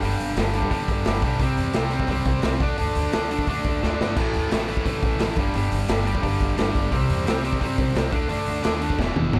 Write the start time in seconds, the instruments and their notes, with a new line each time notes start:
0.02 upright bass G1, distorted electric guitar G2 D3 G3, open hi-hat
0.20 upright bass G1, open hi-hat
0.37 upright bass G1, distorted electric guitar G2 D3 G3, snare, open hi-hat
0.53 distorted electric guitar G2 D3 G3, open hi-hat
0.62 kick
0.71 upright bass G1, distorted electric guitar G2 D3 G3, kick, open hi-hat
0.88 upright bass G1, kick, open hi-hat
1.05 upright bass G1, distorted electric guitar G2 D3 G3, snare, open hi-hat
1.22 upright bass B1, distorted electric guitar G2 D3 G3, kick, open hi-hat
1.39 upright bass C2, distorted electric guitar C3 G3 C4, kick, open hi-hat
1.57 upright bass E2, open hi-hat
1.73 upright bass C2, distorted electric guitar C3 G3 C4, snare, open hi-hat
1.91 distorted electric guitar C3 G3 C4, open hi-hat
2.00 kick
2.07 upright bass C2, distorted electric guitar C3 G3 C4, kick, open hi-hat
2.25 upright bass C2, kick, open hi-hat
2.42 upright bass C2, distorted electric guitar C3 G3 C4, snare, open hi-hat
2.60 upright bass D2, distorted electric guitar D3 A3 D4, kick, open hi-hat
2.78 upright bass D2, distorted electric guitar D3 A3 D4, open hi-hat
2.95 upright bass D2, open hi-hat
3.12 upright bass D2, distorted electric guitar D3 A3 D4, snare, open hi-hat
3.30 distorted electric guitar D3 A3 D4, open hi-hat
3.39 kick
3.47 upright bass D2, distorted electric guitar D3 A3 D4, kick, open hi-hat
3.65 upright bass D2, kick, open hi-hat
3.82 upright bass D2, distorted electric guitar D3 A3 D4, snare
3.99 upright bass G1, distorted electric guitar D3 A3 D4, snare
4.16 upright bass A1, distorted electric guitar A2 E3 A3, kick, crash
4.33 upright bass D2, open hi-hat
4.51 upright bass A1, distorted electric guitar A2 E3 A3, snare, open hi-hat
4.68 distorted electric guitar A2 E3 A3, open hi-hat
4.77 kick
4.86 upright bass A1, distorted electric guitar A2 E3 A3, kick, open hi-hat
5.03 upright bass A1, kick, open hi-hat
5.19 upright bass A1, distorted electric guitar A2 E3 A3, snare, open hi-hat
5.36 upright bass G1, distorted electric guitar G2 D3 G3, kick, open hi-hat
5.54 upright bass G1, distorted electric guitar G2 D3 G3, open hi-hat
5.72 upright bass G1, open hi-hat
5.88 upright bass G1, distorted electric guitar G2 D3 G3, snare, open hi-hat
6.05 distorted electric guitar G2 D3 G3, open hi-hat
6.15 kick
6.22 upright bass G1, distorted electric guitar G2 D3 G3, kick, open hi-hat
6.40 upright bass G1, kick, open hi-hat
6.57 upright bass G1, distorted electric guitar G2 D3 G3, snare, open hi-hat
6.74 upright bass G1, distorted electric guitar G2 D3 G3, kick, open hi-hat
6.92 upright bass C2, distorted electric guitar C3 G3 C4, kick, open hi-hat
7.09 upright bass E2, open hi-hat
7.26 upright bass C2, distorted electric guitar C3 G3 C4, snare, open hi-hat
7.43 distorted electric guitar C3 G3 C4, open hi-hat
7.53 kick
7.61 upright bass C2, distorted electric guitar C3 G3 C4, kick, open hi-hat
7.78 upright bass C2, kick, open hi-hat
7.95 upright bass C2, distorted electric guitar C3 G3 C4, snare, open hi-hat
8.12 upright bass D2, distorted electric guitar D3 A3 D4, kick, open hi-hat
8.29 upright bass D2, distorted electric guitar D3 A3 D4, open hi-hat
8.46 upright bass D2, open hi-hat
8.63 upright bass D#2, distorted electric guitar D3 A3 D4, snare, open hi-hat
8.80 distorted electric guitar D3 A3 D4, open hi-hat
8.90 kick
8.99 upright bass E1, distorted electric guitar E2 B2 E3, kick, snare
9.16 upright bass E1, high tom
9.33 upright bass E1, distorted electric guitar E2 B2 E3, mid tom